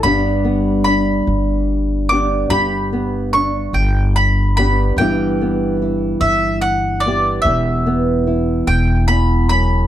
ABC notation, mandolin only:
X:1
M:6/8
L:1/8
Q:3/8=49
K:Em
V:1 name="Mandolin"
b2 b3 d' | b2 ^c' g b b | g2 z e f d | e3 g b b |]